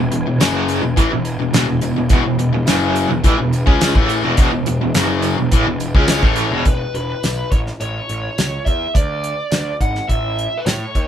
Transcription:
Already playing: E1 E2 B2 E4 B4 G#5
0.12 E1 E2 B2, closed hi-hat
0.26 E1 E2 B2
0.40 F#1 F#2 C#3 F#3, snare, closed hi-hat, tambourine
0.68 closed hi-hat, tambourine
0.83 E1 E2 B2
0.96 A1 A2 E3, kick, closed hi-hat
1.11 E1 E2 B2
1.25 closed hi-hat, tambourine
1.39 E1 E2 B2
1.53 E1 E2 B2, snare, closed hi-hat, tambourine
1.68 E1 E2 B2
1.81 E1 E2 B2, closed hi-hat, tambourine
1.95 E1 E2 B2
2.09 E1 E2 B2 E4 G#4 B4, kick, closed hi-hat, tambourine
2.24 E1 E2 B2
2.38 E1 E2 B2, closed hi-hat
2.52 E1 E2 B2
2.67 F#1 F#2 C#3 F#3, snare, closed hi-hat, tambourine
2.95 closed hi-hat, tambourine
3.09 E1 E2 B2
3.23 A1 A2 E3, kick, closed hi-hat
3.38 E1 E2 B2
3.52 closed hi-hat, tambourine
3.66 C#2 C#3 G#3 C#4, kick
3.81 snare, closed hi-hat, tambourine
3.95 A1 A2 E3 A3, kick
4.09 closed hi-hat, tambourine
4.23 E1 E2 B2
4.37 E1 E2 B2 E4 G#4 B4, kick, closed hi-hat, tambourine
4.52 E1 E2 B2
4.66 E1 E2 B2, closed hi-hat, tambourine
4.81 E1 E2 B2
4.94 F#1 F#2 C#3 F#3, snare, closed hi-hat, tambourine
5.22 closed hi-hat, tambourine
5.38 E1 E2 B2
5.52 A1 A2 E3, kick, closed hi-hat, tambourine
5.65 E1 E2 B2
5.80 closed hi-hat, tambourine
5.94 C#2 C#3 G#3 C#4, kick
6.08 C#5, snare, closed hi-hat, tambourine
6.23 A1 A2 E3 A3, kick
6.36 closed hi-hat, tambourine
6.50 E1 E2 B2
6.65 E1 B4, kick, closed hi-hat
6.94 E1 B4, closed hi-hat
7.23 B1, snare, closed hi-hat, tambourine
7.51 A1 C#5, kick, closed hi-hat
7.67 snare
7.80 A1 C#5, closed hi-hat
8.09 A1, closed hi-hat
8.38 C#2, snare, closed hi-hat, tambourine
8.65 E2 E5, kick, closed hi-hat
8.95 D2 D5, kick, closed hi-hat
9.24 closed hi-hat
9.52 D2, snare, closed hi-hat, tambourine
9.80 G#1 F#5, kick, closed hi-hat
9.95 snare
10.08 A1 E5, kick, closed hi-hat
10.39 closed hi-hat
10.58 B4
10.66 A2 C#5, snare, closed hi-hat, tambourine
10.95 D#2, kick, closed hi-hat

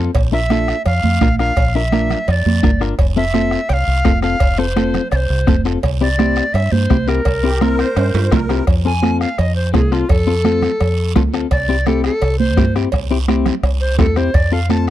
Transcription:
0.00 A4
0.15 A#1, bombo low, bombo rim, cowbell, long guiro
0.33 D4 F4 A#4 E5
0.50 D4 F4 A4, bombo rim, high conga, short guiro
0.68 bombo rim, short guiro
0.86 F2 F5, bombo rim, cowbell, long guiro
1.04 F2, high conga
1.21 A#1 D4 F4 A#4, bombo low, bombo rim, high conga, short guiro
1.39 D4 F4 A#4 F5, bombo rim, short guiro
1.57 A#1, bombo low, bombo rim, cowbell, long guiro
1.75 D4 F4 A#4 E5
1.92 D4 F4 A#4, bombo rim, high conga, short guiro
2.10 bombo rim, low conga, short guiro
2.28 F2 D5 D#5, bombo rim, cowbell, long guiro
2.46 F2, high conga
2.63 G1 D4 F4 A#4, bombo low, bombo rim, high conga, low conga, short guiro
2.81 D4 F4 A#4, bombo rim, short guiro
2.99 F1, bombo low, bombo rim, cowbell, long guiro
3.17 C4 F4 A4 E5
3.34 C4 F4 A4, bombo rim, high conga, short guiro
3.51 bombo rim, short guiro
3.69 C2 G5, bombo rim, cowbell, long guiro
3.73 F5
3.87 C2
4.05 F1 C4 F4 A4, bombo low, bombo rim, high conga, low timbale, short guiro
4.22 C4 F4 A4 F5, bombo rim, short guiro
4.40 F1, bombo low, bombo rim, cowbell, long guiro
4.58 C4 F4 A4 C5
4.76 C4 F4 A4, bombo rim, high conga, short guiro
4.94 bombo rim, low conga, short guiro
5.11 C2 D5, bombo rim, cowbell, long guiro
5.16 C5
5.30 C2
5.47 F1 C4 F4 A4, bombo low, bombo rim, high conga, low conga, short guiro
5.65 C4 F4 A4, bombo rim, short guiro
5.83 C2, bombo low, bombo rim, cowbell, long guiro
6.01 C4 E4 G4 D5
6.19 C4 E4 G4, bombo rim, high conga, short guiro
6.36 bombo rim, short guiro
6.54 G2 E5, bombo rim, cowbell, long guiro
6.72 G2 C5, high conga
6.90 C2 C4 E4 G4, bombo low, bombo rim, high conga, short guiro
7.07 C4 E4 G4 A#4, bombo rim, short guiro
7.25 C2, bombo low, bombo rim, cowbell, long guiro
7.43 C4 E4 G4
7.61 C4 E4 A#4, bombo rim, high conga, short guiro
7.79 C5, bombo rim, short guiro
7.96 G2 C5, bombo rim, cowbell, high timbale, long guiro
8.14 G2 C5, low timbale
8.32 C2 C4 E4 A#4, bombo low, bombo rim, high conga, low conga, low timbale, short guiro
8.49 C4 E4 G4, bombo rim, low timbale, short guiro
8.67 F2, bombo low, bombo rim, cowbell, long guiro
8.85 C4 F4 A4 G#5
9.02 C4 F4 A4, bombo rim, high conga, short guiro
9.20 F5, bombo rim, short guiro
9.38 F2 D#5, bombo rim, cowbell, long guiro
9.56 C5
9.74 C2 C4 F4 G#4 A4, bombo low, bombo rim, high conga, low timbale, short guiro
9.92 C4 F4 A4, bombo rim, short guiro
10.09 F2 A4, bombo low, bombo rim, cowbell, long guiro
10.27 C4 F4 A4
10.45 C4 F4 A4, bombo rim, high conga, short guiro
10.62 bombo rim, low conga, short guiro
10.80 F2, bombo rim, cowbell, long guiro
11.16 D2 C4 F4 A4, bombo low, bombo rim, high conga, low conga, low timbale, short guiro
11.33 C4 F4 A4, bombo rim, short guiro
11.51 C2 D5, bombo low, bombo rim, cowbell, long guiro
11.69 C4 E4 G4
11.86 C4 E4 G4 A4, bombo rim, high conga, short guiro
12.04 A4, bombo rim, short guiro
12.22 C2, bombo rim, cowbell, long guiro
12.39 C5, high conga
12.57 G2 C4 E4 G4, bombo low, bombo rim, high conga, low timbale, short guiro
12.75 C4 E4 G4, bombo rim, short guiro
12.92 C2, bombo low, bombo rim, cowbell, long guiro
13.11 C4 E4 G4
13.28 C4 E4 G4, bombo rim, high conga, short guiro
13.46 bombo rim, low conga, short guiro
13.63 C2, bombo rim, cowbell, long guiro
13.81 C5
13.99 E2 C4 E4 G4 A4, bombo low, bombo rim, high conga, low conga, low timbale, short guiro
14.16 C4 E4 G4 C5, bombo rim, short guiro
14.34 F2 D5, bombo low, bombo rim, cowbell, long guiro
14.52 C4 F4 A4 F5
14.69 C4 F4 A4 A5, bombo rim, high conga, short guiro

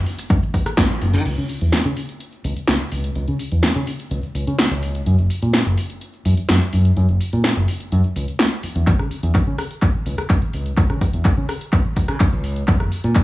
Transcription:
0.06 open hi-hat
0.19 closed hi-hat, shaker
0.30 F#2, kick, closed hi-hat, shaker
0.43 shaker
0.54 kick, open hi-hat
0.66 cross-stick, closed hi-hat, shaker
0.77 kick, snare, closed hi-hat, shaker
0.90 shaker
1.02 F#1, open hi-hat
1.14 D#3, closed hi-hat, shaker
1.25 C#2, closed hi-hat, crash
1.38 C#3, closed hi-hat
1.49 open hi-hat
1.61 E2, closed hi-hat
1.72 snare, closed hi-hat
1.85 C#3, closed hi-hat
1.97 open hi-hat
2.09 closed hi-hat
2.20 closed hi-hat
2.33 closed hi-hat
2.44 C#2, open hi-hat
2.57 muted fingered electric bass stroke, closed hi-hat
2.68 C#2, snare, closed hi-hat
2.80 closed hi-hat
2.92 C#2, open hi-hat
3.04 closed hi-hat
3.15 C#2, closed hi-hat
3.28 C#3, closed hi-hat
3.39 open hi-hat
3.52 E2, closed hi-hat
3.63 snare, closed hi-hat
3.76 C#3, closed hi-hat
3.87 open hi-hat
4.00 closed hi-hat
4.11 C#2, closed hi-hat
4.23 muted fingered electric bass stroke, closed hi-hat
4.35 C#2, open hi-hat
4.47 C#3, closed hi-hat
4.59 snare, closed hi-hat
4.71 C#2, closed hi-hat
4.83 open hi-hat
4.95 closed hi-hat
5.06 F#2, closed hi-hat
5.19 F#1, closed hi-hat
5.30 open hi-hat
5.42 A#2, closed hi-hat
5.53 snare, closed hi-hat
5.66 F#1, closed hi-hat
5.78 open hi-hat
5.90 closed hi-hat
6.01 closed hi-hat
6.14 closed hi-hat
6.25 F#2, open hi-hat
6.37 muted fingered electric bass stroke, closed hi-hat
6.49 F#2, snare, closed hi-hat
6.61 closed hi-hat
6.73 F#2, open hi-hat
6.85 closed hi-hat
6.97 F#2, closed hi-hat
7.09 F#1, closed hi-hat
7.21 open hi-hat
7.33 A#2, closed hi-hat
7.44 snare, closed hi-hat
7.56 F#1, closed hi-hat
7.68 open hi-hat
7.80 closed hi-hat
7.92 F#2, closed hi-hat
8.04 muted fingered electric bass stroke, closed hi-hat
8.16 C#2, open hi-hat
8.28 closed hi-hat
8.39 snare, closed hi-hat
8.52 closed hi-hat
8.63 muted fingered electric bass stroke, open hi-hat
8.76 E2, closed hi-hat
8.87 C#2, kick, clap, closed hi-hat
8.99 C#3, cross-stick, closed hi-hat
9.11 open hi-hat
9.23 E2, closed hi-hat
9.35 kick, clap, closed hi-hat
9.47 C#3, closed hi-hat
9.58 cross-stick, open hi-hat
9.71 closed hi-hat
9.82 kick, clap, closed hi-hat
9.94 closed hi-hat
10.06 C#2, open hi-hat
10.18 muted fingered electric bass stroke, cross-stick, closed hi-hat
10.30 C#2, kick, clap, closed hi-hat
10.42 closed hi-hat
10.53 C#2, open hi-hat
10.66 closed hi-hat
10.77 C#2, kick, clap, closed hi-hat
10.90 C#3, cross-stick, closed hi-hat
11.01 kick, open hi-hat
11.13 E2, closed hi-hat
11.25 kick, clap, closed hi-hat
11.37 C#3, closed hi-hat
11.49 cross-stick, open hi-hat
11.61 closed hi-hat
11.73 C#2, kick, clap, closed hi-hat
11.85 muted fingered electric bass stroke, closed hi-hat
11.96 C#2, kick, open hi-hat
12.08 C#3, cross-stick, closed hi-hat
12.20 kick, clap, closed hi-hat
12.32 C#2, closed hi-hat
12.44 open hi-hat
12.56 closed hi-hat
12.68 F#2, kick, clap, closed hi-hat
12.80 F#1, cross-stick, closed hi-hat
12.92 open hi-hat
13.04 A#2, closed hi-hat
13.15 kick, clap, closed hi-hat

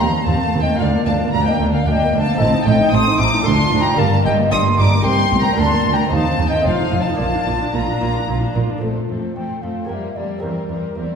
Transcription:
Already playing: C4 F4 A4
0.00 D#2 C4 A#5
0.14 A3
0.26 D#2 C4 F5 A5
0.41 A3
0.53 D#2 C4
0.62 D#5 G5
0.67 A3
0.76 A#3 F4 A#4 F5
0.80 D2 D4 D5 F5
0.94 A#3
1.06 D2 D4 F5 A5
1.20 A#3
1.32 D2 D4 F5 A#5
1.45 A#3 D#5 G5
1.60 D2 D4
1.72 A#3 D5 F5
1.86 D2 D4 F5 G5
1.91 D#5
2.01 A#3
2.13 D2 D4
2.21 F5 A5
2.27 A#3
2.35 C4 D#4 A4
2.39 A1 A2 C4 D#5 A5
2.54 D#4
2.66 A1 A2 C4 D#5 G5
2.80 D#4
2.92 A1 A2 C4 C6 D#6
3.06 D#4
3.18 A1 A2 C4 C6 D6
3.24 A#5
3.32 D#4
3.40 D4 F4 A4
3.45 D2 D4 A5 C6
3.58 F4
3.71 D2 D4
3.81 G5 A#5
3.85 F4
3.94 D4 G4 A#4
3.98 G1 G2 G3 F5 A5
4.12 A#3
4.24 G1 G2 G3 D#5 G5
4.38 A#3
4.51 G1 G2 G3 C6 D#6
4.65 A#3
4.78 G1 G2 G3 C6 D6
4.82 A#5
4.91 A#3
5.00 D#4 G4 A#4 G5 C6
5.04 C2 C4 C6
5.18 A#3
5.32 C2 C4
5.40 G5 A#5
5.46 A#3
5.53 D4 F4 A#4
5.57 D2 D4 A5 C6
5.72 A#3
5.84 D2 D4
5.93 G5 A#5
5.99 A#3
6.07 C4 D#4 C5
6.11 D#2 D#4 F5 A5
6.26 C4
6.38 D#2 D#4
6.47 D#5 G5
6.52 C4
6.61 A3 D#4 C5
6.65 F1 F2 F4 C5 F5
6.79 D#4
6.92 F1 F2 F4
7.01 F5 A5
7.06 D#4
7.15 A#3 D4 D5 A5
7.20 A#1 A#2 F4 F5
7.33 D4
7.47 A#1 A#2 F4
7.61 D4
7.73 A#1 A#2 F4 F5 A#5
7.88 D4
8.01 A#1 A#2 F4
8.15 D4
8.28 A#1 A#2 F4
8.42 D4
8.55 A#1 A#2 F4
8.70 D4
8.78 A3 F4 A4 C5
8.82 F2 A3 C4
9.09 F2 A3 C4 A4 C5
9.35 F2 A3 C4 A4 G5
9.62 F2 A3 C4 A4 F5
9.85 A#3 G4 A#4
9.89 F2 G3 A#4 E5 G5
10.16 F2 G3 A#3 A#4 D5
10.38 G3 C4 G4 A#4
10.42 E2 C4 A#4 C5
10.69 E2 G3 C4 A#4
10.95 E2 G3 C4 A#4 C5

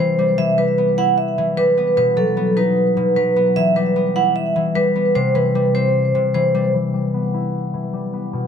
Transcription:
Already playing: C3 G3 C4 E4
0.00 E3 C5
0.19 G3
0.38 E3 E5
0.58 G3 B4
0.78 B3
0.98 E4 F#5
1.18 E5
1.38 E3
1.57 G3 B4
1.78 B3
1.97 B2 B4
2.17 F#3 A4
2.37 B3
2.57 D#4 B4
2.97 B2
3.16 F#3 B4
3.36 B3
3.56 E3 E5
3.76 G3 B4
3.96 B3
4.16 E4 F#5
4.36 E5
4.56 E3
4.75 G3 B4
4.96 B3
5.15 C3 C5
5.35 E3 B4
5.55 G3
5.75 C4 C5
6.15 C3
6.34 E3 C5
6.55 G3
6.74 E3
6.94 G3
7.14 B3
7.34 E4
7.74 E3
7.93 G3
8.13 B3
8.33 B2

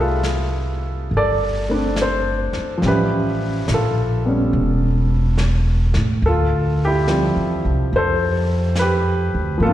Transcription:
Already playing: C2 G3 A3 D4 G4 G#4 B4 E5
0.01 F4 A4
0.23 snare, hi-hat pedal
1.11 G1, brush sweep
1.17 A4 D5
1.69 A3 C4 D4
1.96 snare, hi-hat pedal
2.02 A4 C5
2.53 muted upright bass stroke, snare
2.78 F3 G3
2.82 A1 C#4, brush sweep, snare
2.86 G4 B4 E5
3.68 A#1, snare, hi-hat pedal
3.73 F4 A4
4.25 G3 B3 C#4
4.53 E1, brush sweep
5.38 snare, hi-hat pedal
5.94 A2, snare
6.22 D2, brush sweep
6.26 F4 A4
6.85 E4 G4
7.08 F3 G3 C4 E4, snare, hi-hat pedal
7.36 E2
7.65 C2
7.92 F2, brush sweep
7.96 A4 C5
8.76 B4, snare, hi-hat pedal
8.81 G4
9.35 D2
9.58 G2 F3 A3, brush sweep
9.63 A#3 F4 A4
9.69 D4

